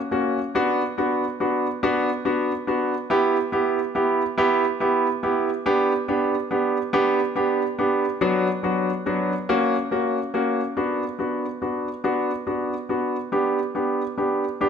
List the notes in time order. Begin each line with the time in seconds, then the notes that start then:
0.11 A#3 C#4 F#4
0.55 B3 D4 F#4
0.98 B3 D4 F#4
1.40 B3 D4 F#4
1.83 B3 D4 F#4
2.25 B3 D4 F#4
2.67 B3 D4 F#4
3.10 B3 E4 G4
3.52 B3 E4 G4
3.95 B3 E4 G4
4.38 B3 E4 G4
4.80 B3 E4 G4
5.23 B3 E4 G4
5.66 B3 D4 G4
6.08 B3 D4 G4
6.51 B3 D4 G4
6.93 B3 D4 G4
7.36 B3 D4 G4
7.79 B3 D4 G4
8.21 F#3 B3 D4 F#4
8.63 F#3 B3 D4 F#4
9.06 F#3 B3 D4 F#4
9.49 A#3 C#4 F#4
9.91 A#3 C#4 F#4
10.34 A#3 C#4 F#4
10.77 B3 D4 F#4
11.19 B3 D4 F#4
11.62 B3 D4 F#4
12.04 B3 D4 F#4
12.47 B3 D4 F#4
12.89 B3 D4 F#4
13.32 B3 D4 G4
13.75 B3 D4 G4
14.18 B3 D4 G4
14.61 B3 D4 G4